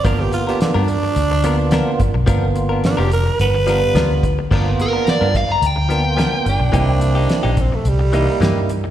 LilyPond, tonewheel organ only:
\new Staff \with { instrumentName = "Tonewheel organ" } { \time 4/4 \key c \major \tempo 4 = 108 <ais b f'>4. r4 <ais b f'>4 r8 | <ais b f'>4. r4 <g b f'>4 r8 | <ais b f'>4. r4 <ais b f'>4 r8 | <bes c' e'>4. r4 <bes dis' e'>4 r8 | }